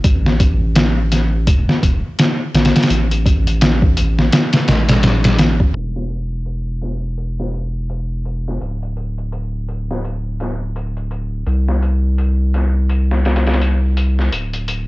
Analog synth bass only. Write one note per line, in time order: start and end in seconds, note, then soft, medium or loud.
0.05 1.49 A1 medium
1.47 1.66 E1 medium
1.83 2.01 E1 loud
2.54 2.73 A1 medium
2.90 4.30 A1 loud
4.68 5.73 A1 medium
5.76 8.58 E1 medium
8.62 11.44 D1 medium
11.47 14.30 C2 medium
14.33 14.88 D1 medium